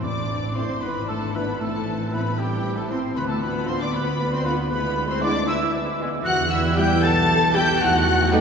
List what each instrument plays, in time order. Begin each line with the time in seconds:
Already playing: harp C4 E4 A4
0.02 double bass section A1, harp A2, viola section C4 E4, cello section D4, oboe D5, trumpet D5, violin section D5 D6, flute D6
0.30 harp C4
0.56 trombone section E3 A3, french horn section C4 E4, cello section C4, harp E4 A4, violin section C5 C6, oboe C5, trumpet C5, flute C6
0.81 double bass section G#1, harp G#2, cello section B3, viola section D4, oboe B4, violin section B4 B5, trumpet B4, flute B5
1.08 cello section A3, harp D4, oboe A4, violin section A4 A5, trumpet A4, flute A5
1.34 trombone section E3 B3, cello section B3, french horn section D4 E4, harp E4 B4, violin section B4 B5, trumpet B4, oboe B4, flute B5
1.59 double bass section A1, harp A2, cello section A3, viola section C4, oboe A4, violin section A4 A5, trumpet A4, flute A5
1.87 harp E3
2.12 trombone section E3 C4, cello section B3, french horn section C4 E4, harp C4, violin section B4 B5, oboe B4, trumpet B4, flute B5
2.38 cello section G3, harp E4, violin section G4 G5, oboe G4, trumpet G4, flute G5
2.65 harp C5
2.76 cello section A3, violin section A4 A5, trumpet A4, oboe A4, flute A5
2.89 trombone section E3 C4, french horn section C4 E4, cello section C4, harp E4, violin section C5 C6, oboe C5, trumpet C5, flute C6
3.16 double bass section D2, harp D3, cello section B3, viola section B3 F4, violin section B4 B5, trumpet B4, oboe B4, flute B5
3.28 cello section A3, violin section A4 A5, trumpet A4, oboe A4, flute A5
3.42 cello section B3, harp D4, violin section B4 B5, oboe B4, trumpet B4, flute B5
3.66 trombone section D3 B3, harp B3, cello section C4, french horn section D4 F4, violin section C5 C6, oboe C5, trumpet C5, flute C6
3.80 cello section D4, violin section D5 D6, oboe D5, trumpet D5, flute D6
3.93 cello section B3, harp F4, violin section B4 B5, trumpet B4, oboe B4, flute B5
4.20 harp D5
4.32 cello section C4, oboe C5, trumpet C5, violin section C5 C6, flute C6
4.43 trombone section D3 B3, cello section B3, french horn section D4 F4, harp F4, trumpet B4, oboe B4, violin section B4 B5, flute B5
4.70 harp D3, viola section G#3 E4, cello section B3, oboe B4, trumpet B4, violin section B4 B5, flute B5
4.96 harp D4
5.08 cello section C4, oboe C5, trumpet C5, violin section C5 C6, flute C6
5.21 trombone section E3 G#3, harp G#3, french horn section B3 E4, cello section D4, oboe D5, trumpet D5, violin section D5 D6, flute D6
5.48 cello section E4, harp E4, oboe E5, trumpet E5, violin section E5 E6, flute E6
5.74 harp B4
5.99 trombone section E3 G#3, french horn section B3 E4, harp E4
6.24 double bass section E2, trombone section B2 G3, harp E3, french horn section B3 E4, cello section F#4, oboe F#5, violin section F#5 F#6, trumpet F#5, flute F#6
6.50 harp G3, cello section E4, violin section E5 E6, oboe E5, trumpet E5, flute E6
6.76 viola section G3 E4, harp E4, cello section G4, oboe G5, violin section G5 G6, trumpet G5, flute G6
7.02 double bass section B1, cello section A4, harp B4, trumpet A5, oboe A5, violin section A5 A6, flute A6
7.28 harp G4
7.53 viola section G3 E4, cello section G4, harp B4, trumpet G5, violin section G5 G6, oboe G5, flute G6
7.79 double bass section E2, harp E3, trombone section F#3, french horn section A3 D#4, cello section F#4, violin section F#5 F#6, trumpet F#5, oboe F#5, flute F#6
8.07 harp A3
8.32 cello section G3, viola section A3 D#4, harp D#4, violin section G4 G5, oboe G4, trumpet G4, flute G5